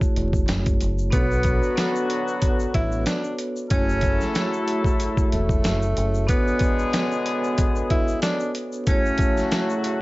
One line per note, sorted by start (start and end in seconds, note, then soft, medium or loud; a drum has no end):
0.00 1.15 A3 medium
0.00 1.15 E4 medium
0.00 1.12 F#4 medium
0.00 1.15 G#4 medium
0.00 1.14 C#5 medium
0.00 kick loud
0.00 shaker medium
0.16 0.46 E1 medium
0.16 closed hi-hat medium
0.33 kick medium
0.33 shaker soft
0.48 0.78 F#1 loud
0.48 snare loud
0.48 closed hi-hat loud
0.48 shaker medium
0.66 kick loud
0.66 closed hi-hat medium
0.66 shaker medium
0.81 1.10 F#1 medium
0.81 closed hi-hat medium
0.81 shaker medium
0.98 shaker medium
1.11 1.59 B1 loud
1.11 3.35 D3 medium
1.11 3.35 F#3 medium
1.11 1.69 B3 medium
1.11 1.91 B3 loud
1.11 3.35 B3 medium
1.11 1.70 D4 medium
1.11 1.70 F#4 medium
1.11 3.35 F#4 loud
1.11 1.71 A4 medium
1.11 1.71 C#5 medium
1.11 kick loud
1.11 closed hi-hat medium
1.11 shaker medium
1.31 shaker soft
1.43 kick loud
1.43 closed hi-hat medium
1.43 shaker medium
1.63 shaker medium
1.76 2.92 B3 medium
1.76 2.92 D4 medium
1.76 2.93 F#4 medium
1.76 2.93 A4 medium
1.76 1.86 B4 medium
1.76 snare loud
1.76 closed hi-hat loud
1.76 shaker medium
1.86 2.97 C#5 medium
1.96 shaker medium
2.10 closed hi-hat medium
2.28 shaker soft
2.42 kick loud
2.42 closed hi-hat medium
2.42 shaker medium
2.60 shaker medium
2.74 3.04 A1 loud
2.74 3.03 E4 medium
2.74 kick medium
2.74 closed hi-hat medium
2.92 shaker medium
3.06 3.36 D4 medium
3.06 snare loud
3.06 closed hi-hat loud
3.06 shaker medium
3.24 shaker medium
3.39 closed hi-hat medium
3.39 shaker medium
3.56 shaker medium
3.70 4.17 F#1 loud
3.70 5.92 F#3 loud
3.70 5.92 A3 loud
3.70 4.28 A3 medium
3.70 4.49 C#4 loud
3.70 5.92 E4 loud
3.70 4.29 E4 medium
3.70 4.29 F#4 medium
3.70 4.30 G#4 medium
3.70 5.92 A4 loud
3.70 kick loud
3.70 closed hi-hat medium
3.70 shaker medium
3.74 4.30 C#5 medium
3.89 shaker soft
4.01 kick loud
4.01 closed hi-hat medium
4.01 shaker medium
4.21 snare soft
4.21 shaker medium
4.34 5.50 A3 medium
4.34 5.50 E4 medium
4.34 5.51 F#4 medium
4.34 5.51 G#4 medium
4.34 5.52 C#5 medium
4.34 snare loud
4.34 closed hi-hat loud
4.34 shaker medium
4.53 shaker medium
4.68 closed hi-hat medium
4.85 kick loud
4.85 shaker medium
5.00 closed hi-hat medium
5.00 shaker medium
5.17 kick loud
5.17 shaker medium
5.32 5.62 E1 medium
5.32 6.25 A3 medium
5.32 closed hi-hat medium
5.49 kick medium
5.49 shaker medium
5.64 5.94 F#1 loud
5.64 snare loud
5.64 closed hi-hat loud
5.64 shaker medium
5.82 shaker medium
5.97 6.26 F#1 medium
5.97 closed hi-hat medium
5.97 shaker medium
6.14 shaker medium
6.27 8.51 D3 medium
6.27 8.51 G#3 loud
6.27 6.86 B3 medium
6.27 7.07 B3 loud
6.27 8.51 B3 medium
6.27 6.86 D4 medium
6.27 6.86 F#4 medium
6.27 8.51 G#4 loud
6.27 6.87 A4 medium
6.27 6.87 C#5 medium
6.27 kick loud
6.27 closed hi-hat medium
6.27 shaker medium
6.48 shaker soft
6.59 kick loud
6.59 closed hi-hat medium
6.59 shaker medium
6.79 shaker medium
6.92 8.08 B3 medium
6.92 8.09 D4 medium
6.92 8.09 F#4 medium
6.92 8.10 A4 medium
6.92 7.02 B4 medium
6.92 snare loud
6.92 closed hi-hat loud
6.92 shaker medium
7.02 8.13 C#5 medium
7.12 shaker medium
7.26 closed hi-hat medium
7.44 shaker medium
7.58 kick loud
7.58 closed hi-hat medium
7.58 shaker medium
7.76 shaker medium
7.90 8.19 E4 medium
7.90 kick medium
7.90 closed hi-hat medium
8.08 shaker medium
8.22 8.52 D4 medium
8.22 snare loud
8.22 closed hi-hat loud
8.22 shaker medium
8.40 shaker medium
8.55 closed hi-hat medium
8.55 shaker medium
8.73 shaker medium
8.87 10.02 C#3 medium
8.87 10.02 F#3 medium
8.87 10.02 A3 medium
8.87 9.45 A3 medium
8.87 9.65 C#4 loud
8.87 9.45 E4 medium
8.87 10.02 F#4 loud
8.87 9.46 F#4 medium
8.87 9.46 G#4 medium
8.87 9.47 C#5 medium
8.87 kick loud
8.87 closed hi-hat medium
8.87 shaker medium
9.06 shaker soft
9.18 kick loud
9.18 closed hi-hat medium
9.18 shaker medium
9.37 snare soft
9.37 shaker medium
9.50 10.02 A3 medium
9.50 10.02 E4 medium
9.50 10.02 F#4 medium
9.50 10.02 G#4 medium
9.50 10.02 C#5 medium
9.50 snare loud
9.50 closed hi-hat loud
9.50 shaker medium
9.70 shaker medium
9.84 closed hi-hat medium
9.84 shaker medium